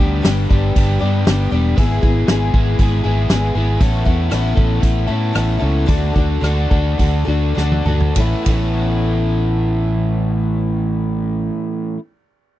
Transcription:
Already playing: overdriven electric guitar G2 D3 G4
0.00 fingered electric bass D2, overdriven electric guitar G3 B3 D4
0.23 fingered electric bass G1, overdriven electric guitar G3 B3 D4 G4, snare, open hi-hat
0.50 fingered electric bass G1, overdriven electric guitar G2 D3 G3 B3 D4 G4, kick
0.76 fingered electric bass G1, overdriven electric guitar G3 B3 D4, kick, open hi-hat
0.80 overdriven electric guitar G4
1.01 fingered electric bass G2, overdriven electric guitar G2 D3 G3 B3 D4 G4
1.27 fingered electric bass G1, overdriven electric guitar G3 B3 D4 G4, snare, open hi-hat
1.52 fingered electric bass E1, overdriven electric guitar G3 B3 D4 G4
1.76 fingered electric bass G#1, overdriven electric guitar G#3 B3 E4 G#4, kick, open hi-hat
2.00 fingered electric bass G#1, overdriven electric guitar B3 E4 G#4, kick
2.27 fingered electric bass G#1, overdriven electric guitar G#3 B3 E4 G#4, snare, open hi-hat
2.54 fingered electric bass G#1, overdriven electric guitar G#3 B3 E4 G#4, kick
2.79 fingered electric bass G#1, overdriven electric guitar G#3 B3 E4 G#4, kick, open hi-hat
3.03 fingered electric bass G#1, overdriven electric guitar G#3 B3 E4 G#4
3.29 fingered electric bass G#1, overdriven electric guitar G#3 B3 E4 G#4, snare, open hi-hat
3.55 fingered electric bass G#1, overdriven electric guitar B3 E4 G#4
3.80 fingered electric bass A1, overdriven electric guitar A2 A3 C#4 E4 A4, twelve-string acoustic guitar B3, kick, open hi-hat
4.06 fingered electric bass E2, twelve-string acoustic guitar B3, overdriven electric guitar C#4 E4 A4, kick
4.30 fingered electric bass A1, overdriven electric guitar A3 C#4 E4 A4, twelve-string acoustic guitar B3, cross-stick, open hi-hat
4.55 fingered electric bass A1, overdriven electric guitar A2 A3 C#4 E4 A4, kick
4.80 fingered electric bass A1, overdriven electric guitar A3 C#4 E4 A4, kick, open hi-hat
5.07 fingered electric bass A2, overdriven electric guitar A2 A3 C#4 E4 A4, twelve-string acoustic guitar B3
5.34 fingered electric bass A1, overdriven electric guitar A3 C#4 E4 A4, twelve-string acoustic guitar B3, cross-stick, open hi-hat
5.59 fingered electric bass C#2, twelve-string acoustic guitar B3, overdriven electric guitar C#4 E4 A4
5.86 fingered electric bass D2, overdriven electric guitar D3 D4 F#4 A4, kick, open hi-hat
6.15 fingered electric bass D2, overdriven electric guitar D4 F#4 A4, kick
6.41 fingered electric bass D2, overdriven electric guitar D3 D4 F#4 A4, cross-stick, open hi-hat
6.70 fingered electric bass D2, overdriven electric guitar D3 D4 F#4 A4, kick
6.98 fingered electric bass D2, overdriven electric guitar D3 D4 F#4 A4, kick, open hi-hat
7.27 fingered electric bass D2, overdriven electric guitar D3 D4 F#4 A4
7.55 fingered electric bass D2, overdriven electric guitar D3 D4 F#4 A4, snare
7.72 high tom
7.86 fingered electric bass D2, overdriven electric guitar D4 F#4 A4, mid tom
8.00 floor tom
8.16 fingered electric bass A1, overdriven electric guitar A2 E3 A3 C#4, twelve-string acoustic guitar B3, kick, ride
8.20 overdriven electric guitar E4
8.46 fingered electric bass A1, overdriven electric guitar A2 E3 A3 C#4, kick, ride
8.50 twelve-string acoustic guitar B3, overdriven electric guitar E4

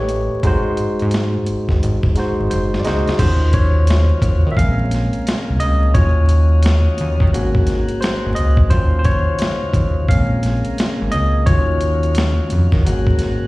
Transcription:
Already playing: analog synth bass A1, tine electric piano A3 G4 B4 C#5 D#5
0.09 closed hi-hat
0.43 analog synth bass G#1, tine electric piano G#3 D#4 F#4 C5, kick, closed hi-hat
0.77 analog synth bass G#2, closed hi-hat
0.99 analog synth bass G#2, closed hi-hat
1.11 snare, closed hi-hat
1.46 analog synth bass G#1, closed hi-hat
1.69 analog synth bass G#1, kick, snare
1.83 analog synth bass G#1, closed hi-hat
2.03 analog synth bass F#1, kick
2.15 tine electric piano G#3 D#4 F#4, snare, closed hi-hat
2.19 tine electric piano C5
2.40 analog synth bass G#1
2.50 analog synth bass F#1, tine electric piano C5, closed hi-hat
2.74 snare
2.80 tine electric piano D5
2.84 analog synth bass C#2, tine electric piano G#3 D#4 F#4 D#5, snare, closed hi-hat
2.88 tine electric piano C5
3.07 snare, closed hi-hat
3.19 analog synth bass D#2, tonewheel organ C#3 D#3 F#3 F4, tine electric piano F#3 C#4 F4 C5, kick, closed hi-hat, crash
3.53 tine electric piano C#5, kick, closed hi-hat
3.87 snare, closed hi-hat
4.22 analog synth bass D#2, kick, closed hi-hat
4.47 analog synth bass D#3
4.52 tine electric piano E5
4.57 analog synth bass A#1, tonewheel organ A#2 G#3 A#3, tine electric piano G#3 C4 C#4 F5, kick, closed hi-hat
4.91 snare, closed hi-hat
5.13 closed hi-hat
5.27 snare, closed hi-hat
5.50 analog synth bass C2
5.60 analog synth bass C#2, tine electric piano D#5, closed hi-hat
5.94 analog synth bass D#2, tonewheel organ C#3 F#3 D#4 F4, tine electric piano F#3 C#4 F4 C#5, kick, closed hi-hat
6.29 closed hi-hat
6.63 snare, closed hi-hat
6.98 analog synth bass D#2, closed hi-hat
7.20 analog synth bass D#3, kick
7.33 analog synth bass G#1, tonewheel organ G#3 A#3 F#4, tine electric piano A#3 C#4 F#4, closed hi-hat
7.55 kick
7.67 snare, closed hi-hat
7.88 closed hi-hat
8.01 tine electric piano C5, snare, closed hi-hat
8.26 analog synth bass G#1
8.35 analog synth bass C#2, tine electric piano D#5, closed hi-hat
8.57 kick
8.70 analog synth bass D#2, tonewheel organ C#3 D#3 F#3 F4, tine electric piano F#3 C#4 F4 C5, kick, closed hi-hat
8.99 tine electric piano C5
9.04 tine electric piano C#5, kick, closed hi-hat
9.39 snare, closed hi-hat
9.63 analog synth bass D#2
9.74 analog synth bass D#2, kick, closed hi-hat
10.08 analog synth bass A#1, tonewheel organ A#2 G#3 A#3, tine electric piano G#3 C4 C#4 F5, kick, closed hi-hat
10.43 snare, closed hi-hat
10.65 closed hi-hat
10.78 snare, closed hi-hat
11.02 analog synth bass G#1
11.12 analog synth bass C#2, tine electric piano D#5, closed hi-hat
11.46 analog synth bass D#2, tonewheel organ D#3 F#3 F4, tine electric piano F#3 C#4 F4 C#5, kick, closed hi-hat
11.81 closed hi-hat
12.03 closed hi-hat
12.15 snare, closed hi-hat
12.50 analog synth bass F2, closed hi-hat
12.72 analog synth bass D#3, kick, snare
12.85 analog synth bass G#1, tonewheel organ C#3 G#3 A#3 F#4, tine electric piano A#3 C#4 F#4, closed hi-hat
13.07 kick
13.19 snare, closed hi-hat

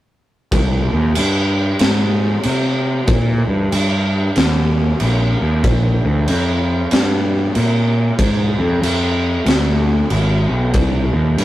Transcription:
0.52 picked electric bass C2, kick, crash
0.92 picked electric bass D#2
1.15 picked electric bass G2, crash
1.79 picked electric bass G#2, snare, crash
2.43 picked electric bass C3, crash
3.07 picked electric bass A#2, kick, crash
3.48 picked electric bass G2
3.72 picked electric bass G2, crash
4.36 picked electric bass D#2, snare, crash
5.00 picked electric bass A#1, crash
5.41 picked electric bass D#2
5.63 picked electric bass A#1, kick, crash
6.05 picked electric bass D2
6.28 picked electric bass F2, crash
6.91 picked electric bass G2, snare, crash
7.55 picked electric bass A#2, crash
8.19 picked electric bass G#2, kick, crash
8.59 picked electric bass F2
8.82 picked electric bass F2, crash
9.46 picked electric bass D2, snare, crash
10.10 picked electric bass G#1, crash
10.49 picked electric bass B1
10.73 picked electric bass C2, kick, crash
11.13 picked electric bass D#2
11.38 picked electric bass G2, crash

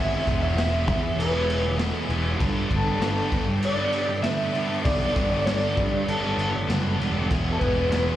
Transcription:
Already playing: picked electric bass G#1, distorted electric guitar E3 G#3 B3 E4, string machine G#4 F#5 B5 E6, clean electric guitar E5
0.24 picked electric bass E1, distorted electric guitar E3 G#3 B3 E4, kick, crash
0.40 distorted electric guitar G#3 B3 E4, clean electric guitar E5
0.56 distorted electric guitar E3 G#3 B3 E4, clean electric guitar E5, snare, crash
0.86 picked electric bass E2, distorted electric guitar E3 G#3 B3 E4, kick, crash
1.03 muted distorted electric guitar stroke
1.17 picked electric bass E1, clean electric guitar B4, crash
1.34 distorted electric guitar G#3 B3 E4
1.47 distorted electric guitar E3 G#3 B3 E4, crash
1.64 muted distorted electric guitar stroke
1.78 distorted electric guitar E3 G#3 B3 E4, clean electric guitar A4, snare, crash
2.07 picked electric bass E1, distorted electric guitar E3 G#3 B3 E4, crash
2.23 distorted electric guitar B3 E4
2.27 distorted electric guitar G#3
2.36 distorted electric guitar G2 D3 G3 B3, string machine A4 G5 D6, kick
2.41 picked electric bass G1, distorted electric guitar D4, crash
2.69 picked electric bass G1, distorted electric guitar D3 G3 B3 D4, kick, crash
2.76 clean electric guitar A4
2.84 distorted electric guitar G3 B3 D4
2.98 distorted electric guitar G2 D3 G3 B3 D4, snare, crash
3.30 picked electric bass G1, distorted electric guitar D3 G3 B3 D4, kick, crash
3.45 muted distorted electric guitar stroke
3.62 clean electric guitar D5, crash
3.75 distorted electric guitar G3 B3 D4
3.92 distorted electric guitar D3 G3 B3 D4, crash
4.08 muted distorted electric guitar stroke
4.22 distorted electric guitar G2 D3 G3 B3 D4, clean electric guitar E5, snare, crash
4.53 distorted electric guitar D3 G3 B3 D4, crash
4.67 distorted electric guitar G3 B3 D4
4.84 picked electric bass B1, distorted electric guitar G2 D3 G3 B3 D4, clean electric guitar D5, kick, crash
5.12 distorted electric guitar D3 G3 B3 D4
5.16 picked electric bass G1, kick, crash
5.27 distorted electric guitar G3 B3 D4, clean electric guitar D5
5.44 distorted electric guitar G2 D3 G3 B3 D4, clean electric guitar D5, snare, crash
5.77 picked electric bass G2, distorted electric guitar D3 G3 B3 D4, kick, crash
5.91 muted distorted electric guitar stroke
6.07 picked electric bass G1, clean electric guitar A4, crash
6.20 distorted electric guitar G3 B3 D4
6.35 picked electric bass G1, distorted electric guitar D3 G3 B3 D4, crash
6.51 muted distorted electric guitar stroke
6.55 muted distorted electric guitar stroke
6.67 picked electric bass F#1, distorted electric guitar G2 D3 G3 B3 D4, snare, crash
6.98 picked electric bass E1, distorted electric guitar D3 G3 B3 D4, crash
7.14 distorted electric guitar G3 B3 D4
7.28 picked electric bass E1, distorted electric guitar E3 G#3 B3 E4, string machine G#4 B5, kick, crash
7.33 string machine F#5 E6
7.52 clean electric guitar A4
7.59 picked electric bass E1, distorted electric guitar E3 G#3 B3, clean electric guitar B4, kick, crash
7.63 distorted electric guitar E4
7.75 distorted electric guitar G#3 B3 E4
7.89 distorted electric guitar E3 G#3 B3 E4, snare, crash

